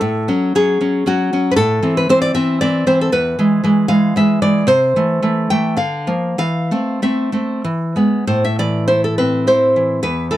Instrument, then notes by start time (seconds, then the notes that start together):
nylon-string guitar
Already playing: A4
0.01 A2
0.28 F#3 C#4
0.55 F#3 C#4 G#4
0.81 F#3 C#4
1.06 F#3 C#4 F#4
1.33 F#3 C#4
1.51 B4
1.56 A2 A4
1.83 E3 C4
1.97 B4
2.09 E3 C4 C5
2.22 D5
2.34 E3 C4 E5
2.61 E3 C4 D5
2.87 E3 C4 C5
3.01 A4
3.12 E2 B4
3.39 E3 G#3
3.64 E3 G#3
3.88 E3 G#3 F5
4.16 E3 G#3 E5
4.42 E3 G#3 D5
4.67 C3 C5
4.96 E3 A3
5.22 E3 A3
5.50 E3 A3 G5
5.77 D3 F5
6.07 F3 A#3
6.38 E3 F5
6.71 A3 C4
7.02 A3 C4 E5
7.32 A3 C4
7.64 E3
7.96 G#3 B3
8.27 A2 C5
8.45 E5
8.59 E3 D5
8.88 E4 C5
9.04 A4
9.18 C4 B4
9.47 E4 C5
9.76 E3
10.03 E2 B4
10.31 E3 A4